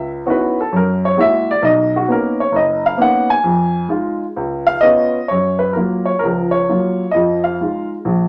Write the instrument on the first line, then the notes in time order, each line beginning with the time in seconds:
grand piano
Already playing: C#2
0.26 B3 C#4 D#4 E4 F#4
0.30 B4
0.61 A4
0.73 F#2 A#4
1.05 C#5
1.17 G#3 A#3 E4 F#4 E5
1.51 D5
1.62 B1 D#5
1.96 F#4
2.08 A#3 B3 C#4 D#4 A#4
2.40 C#5
2.52 F#1
2.56 D#5
2.86 F5
2.98 A#3 B3 C#4 D#4
3.02 F#5
3.30 G#5
3.44 F2
3.89 G#3 D#4 F4
4.36 C#2
4.67 F5
4.81 B3 C#4 F4 D#5
5.28 F#2 C#5
5.59 B4
5.73 F#3 A#3 F4 A#4
6.05 C#5
6.19 A#4
6.23 C#2 F3
6.51 C#5
6.69 F#3 A#3 F4
7.11 F2 F3 D#5
7.44 F5
7.61 G#3 D#4 F4
8.05 A#1